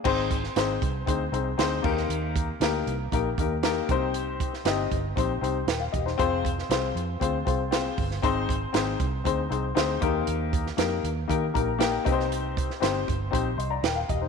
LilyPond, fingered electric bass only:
\new Staff \with { instrumentName = "Fingered electric bass" } { \clef bass \time 4/4 \key aes \lydian \tempo 4 = 117 aes,,4 aes,,8 c,8 d,8 c,8 d,8 ees,8 | ees,4 d,8 c,8 bes,,8 ees,4 c,8~ | c,4 g,,8 g,,8 bes,,8 c,8 ees,,8 fes,,8 | f,,4 c,8 f,8 d,8 c,4 g,,8 |
aes,,4 aes,,8 c,8 d,8 c,8 d,8 ees,8 | ees,4 f,8 ees,8 ees8 bes,,4 c,8~ | c,4 g,,8 g,,8 bes,,8 c,8 ees,,8 fes,,8 | }